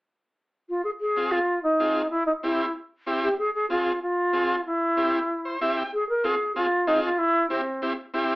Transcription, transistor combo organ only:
1.16 1.39 C4 medium
1.16 1.39 F4 medium
1.16 1.39 G#4 medium
1.80 2.02 C4 medium
1.80 2.02 F4 medium
1.80 2.02 G#4 medium
2.43 2.66 C4 medium
2.43 2.66 E4 medium
2.43 2.66 G4 medium
3.06 3.29 C4 medium
3.06 3.29 E4 medium
3.06 3.29 G4 medium
3.70 3.92 C4 medium
3.70 3.92 F4 medium
3.70 3.93 G#4 medium
4.33 4.56 C4 medium
4.33 4.56 F4 medium
4.33 4.56 G#4 medium
4.97 5.19 C4 medium
4.97 5.19 E4 medium
4.97 5.20 G4 medium
5.45 5.60 C5 medium
5.61 5.83 C4 medium
5.61 5.83 E4 medium
5.61 5.83 G4 medium
5.61 5.76 E5 medium
5.77 5.92 G5 medium
6.24 6.35 C4 medium
6.24 6.35 F4 medium
6.24 6.36 G#4 medium
6.56 6.67 C4 medium
6.56 6.67 F4 medium
6.56 6.67 G#4 medium
6.87 7.09 C4 medium
6.87 7.10 F4 medium
6.87 7.10 G#4 medium
7.50 7.61 C4 medium
7.50 7.61 E4 medium
7.50 7.62 G4 medium
7.82 7.93 C4 medium
7.82 7.93 E4 medium
7.82 7.93 G4 medium
8.14 8.35 C4 medium
8.14 8.35 E4 medium
8.14 8.35 G4 medium

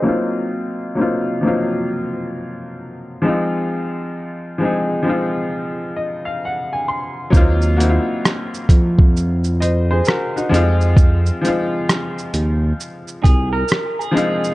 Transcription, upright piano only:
0.00 0.89 F#3 medium
0.00 0.90 A#3 medium
0.00 0.34 C5 medium
0.00 0.34 D#5 medium
0.05 0.91 C4 medium
0.05 0.91 D#4 medium
0.05 0.92 F4 medium
0.95 1.38 F#3 medium
0.95 1.39 A#3 medium
0.95 1.40 C4 medium
1.00 1.41 D#4 medium
1.00 1.42 F4 medium
1.41 1.50 F3 medium
1.41 3.13 A#3 medium
1.41 3.14 C4 medium
1.46 3.15 F#3 medium
1.46 3.14 D#4 medium
1.46 3.15 F4 medium
3.22 4.51 F3 medium
3.22 4.51 G#3 medium
3.22 4.52 C4 medium
3.26 4.53 D#4 medium
3.26 4.54 F4 medium
4.58 5.01 F3 medium
4.58 5.03 G#3 medium
4.58 5.03 C4 medium
4.63 5.04 D#4 medium
4.63 5.05 G#4 medium
5.03 6.75 F3 medium
5.03 6.75 G#3 medium
5.03 6.76 C4 medium
5.08 6.77 D#4 medium
5.08 6.78 F4 medium
5.96 6.24 D#5 medium
6.25 6.41 F5 medium
6.45 6.71 F#5 medium
6.73 6.87 G#5 medium
6.88 7.30 C6 medium
7.30 7.74 F#3 medium
7.30 7.75 A#3 medium
7.30 7.76 C4 medium
7.35 7.77 D#4 medium
7.35 7.77 F4 loud
7.77 9.49 A#3 medium
7.77 9.49 C4 medium
7.77 9.48 F#4 medium
7.81 9.50 D#4 medium
7.81 7.89 E4 medium
7.89 9.54 F4 medium
9.60 9.89 C5 soft
9.60 9.88 D#5 medium
9.91 10.06 G#4 medium
9.91 10.05 C5 medium
10.07 10.35 F#4 medium
10.07 10.34 A#4 medium
10.36 10.52 D#4 medium
10.36 10.79 F#4 medium
10.49 11.35 F3 medium
10.49 11.36 G#3 medium
10.49 11.37 C4 medium
10.54 11.38 D#4 medium
10.54 11.38 F4 loud
11.41 13.12 F3 medium
11.41 13.13 G#3 medium
11.41 13.14 C4 medium
11.46 13.15 D#4 medium
11.46 13.15 F4 medium
14.11 14.54 F3 medium
14.11 14.54 G#3 medium
14.11 14.54 C4 medium
14.16 14.54 D#4 medium
14.16 14.54 F4 medium

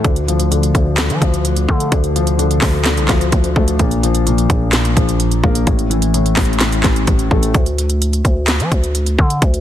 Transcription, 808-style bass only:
0.05 0.72 D2 loud
0.75 1.11 D2 loud
1.10 1.21 F3 loud
1.22 1.67 D2 loud
1.69 1.91 D3 loud
1.92 2.59 D2 loud
2.62 2.99 D2 loud
2.98 3.09 C2 loud
3.09 3.32 D2 loud
3.32 3.55 D2 loud
3.56 3.79 D2 loud
3.79 4.47 A#1 loud
4.50 4.95 A#1 loud
4.97 5.42 A#1 loud
5.44 5.66 A#1 loud
5.67 6.34 A1 loud
6.37 6.82 A1 loud
6.84 7.07 A1 loud
7.08 7.30 A1 loud
7.31 7.54 A1 loud
7.55 8.22 D2 loud
8.25 8.62 D2 loud
8.60 8.71 F3 loud
8.72 9.17 D2 loud
9.19 9.41 D3 loud
9.42 9.61 D2 loud

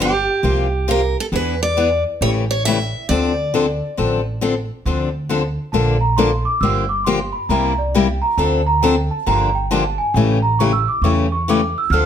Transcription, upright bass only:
0.00 0.26 G1 medium
0.43 1.14 C2 medium
1.32 2.03 E2 medium
2.21 2.91 A1 medium
3.09 3.80 D2 medium
3.98 4.68 A1 medium
4.86 5.56 D2 medium
5.73 6.44 A#1 medium
6.61 7.32 G1 medium
7.49 8.20 C2 medium
8.38 9.08 D2 medium
9.27 9.97 G1 medium
10.14 10.85 A1 medium
11.02 11.73 E2 medium
11.90 12.06 D2 medium

